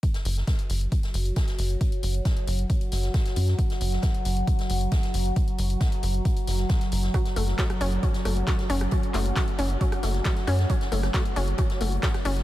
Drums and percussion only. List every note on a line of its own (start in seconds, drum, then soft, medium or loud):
0.03 kick loud
0.03 closed hi-hat medium
0.14 snare medium
0.14 closed hi-hat medium
0.25 closed hi-hat medium
0.25 open hi-hat loud
0.37 snare soft
0.37 closed hi-hat medium
0.47 kick loud
0.47 snare loud
0.47 closed hi-hat medium
0.59 closed hi-hat medium
0.70 closed hi-hat medium
0.70 open hi-hat loud
0.81 closed hi-hat medium
0.92 kick loud
0.92 closed hi-hat medium
1.03 snare soft
1.03 closed hi-hat medium
1.14 closed hi-hat medium
1.14 open hi-hat loud
1.25 closed hi-hat medium
1.25 closed hi-hat soft
1.36 kick loud
1.36 snare loud
1.36 closed hi-hat medium
1.48 snare soft
1.48 closed hi-hat medium
1.58 closed hi-hat medium
1.58 open hi-hat loud
1.70 closed hi-hat medium
1.70 closed hi-hat soft
1.81 kick loud
1.81 closed hi-hat medium
1.92 closed hi-hat medium
2.03 closed hi-hat medium
2.03 open hi-hat loud
2.14 closed hi-hat soft
2.14 closed hi-hat medium
2.25 kick loud
2.25 snare loud
2.25 closed hi-hat medium
2.37 closed hi-hat medium
2.47 closed hi-hat medium
2.47 open hi-hat loud
2.59 closed hi-hat medium
2.70 kick loud
2.70 closed hi-hat medium
2.81 closed hi-hat soft
2.81 closed hi-hat medium
2.92 snare soft
2.92 closed hi-hat medium
2.92 open hi-hat loud
3.03 snare soft
3.03 closed hi-hat medium
3.14 kick loud
3.14 snare loud
3.14 closed hi-hat medium
3.26 snare soft
3.26 closed hi-hat medium
3.36 closed hi-hat medium
3.36 open hi-hat loud
3.48 snare soft
3.48 closed hi-hat medium
3.58 kick loud
3.58 closed hi-hat medium
3.70 snare soft
3.70 closed hi-hat medium
3.81 closed hi-hat medium
3.81 open hi-hat loud
3.92 snare soft
3.92 closed hi-hat medium
4.02 kick loud
4.02 snare loud
4.02 closed hi-hat medium
4.14 closed hi-hat medium
4.25 closed hi-hat medium
4.25 open hi-hat loud
4.37 closed hi-hat medium
4.47 kick loud
4.47 closed hi-hat medium
4.59 snare medium
4.59 closed hi-hat medium
4.69 closed hi-hat medium
4.69 open hi-hat loud
4.81 closed hi-hat soft
4.81 closed hi-hat medium
4.91 kick loud
4.91 snare loud
4.91 closed hi-hat medium
5.03 snare soft
5.03 closed hi-hat medium
5.14 closed hi-hat medium
5.14 open hi-hat loud
5.25 closed hi-hat soft
5.25 closed hi-hat medium
5.36 kick loud
5.36 closed hi-hat medium
5.48 closed hi-hat medium
5.58 closed hi-hat medium
5.58 open hi-hat loud
5.70 closed hi-hat soft
5.70 closed hi-hat medium
5.80 kick loud
5.80 snare loud
5.80 closed hi-hat medium
5.80 closed hi-hat loud
5.92 closed hi-hat soft
6.03 closed hi-hat medium
6.03 open hi-hat loud
6.14 closed hi-hat medium
6.25 kick loud
6.25 closed hi-hat medium
6.37 closed hi-hat soft
6.47 snare soft
6.47 closed hi-hat medium
6.47 open hi-hat loud
6.58 snare soft
6.58 closed hi-hat medium
6.69 kick loud
6.69 snare loud
6.69 closed hi-hat medium
6.81 snare soft
6.81 closed hi-hat medium
6.92 closed hi-hat medium
6.92 open hi-hat loud
7.03 snare medium
7.03 closed hi-hat medium
7.14 kick loud
7.14 cross-stick medium
7.14 closed hi-hat medium
7.25 snare soft
7.25 closed hi-hat soft
7.36 closed hi-hat medium
7.36 open hi-hat loud
7.48 snare soft
7.48 closed hi-hat medium
7.58 kick loud
7.58 snare loud
7.58 clap loud
7.58 closed hi-hat medium
7.70 cross-stick medium
7.70 closed hi-hat medium
7.80 closed hi-hat medium
7.80 open hi-hat loud
7.92 closed hi-hat medium
8.03 kick loud
8.03 closed hi-hat medium
8.14 snare medium
8.14 closed hi-hat medium
8.25 cross-stick medium
8.25 closed hi-hat medium
8.25 open hi-hat loud
8.37 closed hi-hat soft
8.47 kick loud
8.47 snare loud
8.47 clap loud
8.47 closed hi-hat medium
8.58 snare soft
8.58 closed hi-hat soft
8.70 closed hi-hat medium
8.70 open hi-hat loud
8.81 cross-stick medium
8.81 closed hi-hat soft
8.81 closed hi-hat medium
8.91 kick loud
8.91 closed hi-hat medium
9.03 closed hi-hat soft
9.14 clap medium
9.14 closed hi-hat medium
9.14 open hi-hat loud
9.24 closed hi-hat soft
9.24 closed hi-hat medium
9.36 kick loud
9.36 cross-stick medium
9.36 snare loud
9.36 clap loud
9.36 closed hi-hat medium
9.48 closed hi-hat soft
9.59 closed hi-hat medium
9.59 open hi-hat loud
9.70 closed hi-hat medium
9.81 kick loud
9.81 closed hi-hat medium
9.92 cross-stick medium
9.92 closed hi-hat soft
10.03 snare soft
10.03 closed hi-hat medium
10.03 open hi-hat loud
10.14 snare soft
10.14 closed hi-hat soft
10.24 kick loud
10.24 snare loud
10.24 clap loud
10.24 closed hi-hat medium
10.36 snare soft
10.36 closed hi-hat soft
10.47 cross-stick medium
10.47 closed hi-hat medium
10.47 open hi-hat loud
10.59 snare medium
10.59 closed hi-hat soft
10.70 kick loud
10.70 closed hi-hat medium
10.81 snare medium
10.81 closed hi-hat medium
10.92 closed hi-hat medium
10.92 open hi-hat loud
11.03 cross-stick medium
11.03 snare medium
11.03 closed hi-hat medium
11.14 kick loud
11.14 snare loud
11.14 clap loud
11.14 closed hi-hat medium
11.25 closed hi-hat medium
11.36 closed hi-hat medium
11.36 open hi-hat loud
11.48 closed hi-hat medium
11.58 kick loud
11.58 cross-stick medium
11.58 closed hi-hat medium
11.70 snare soft
11.70 closed hi-hat medium
11.81 closed hi-hat medium
11.81 open hi-hat loud
11.92 closed hi-hat medium
11.92 closed hi-hat soft
12.03 kick loud
12.03 snare loud
12.03 clap loud
12.03 closed hi-hat medium
12.14 cross-stick medium
12.14 snare soft
12.14 closed hi-hat soft
12.25 closed hi-hat medium
12.25 open hi-hat loud
12.37 snare soft
12.37 closed hi-hat medium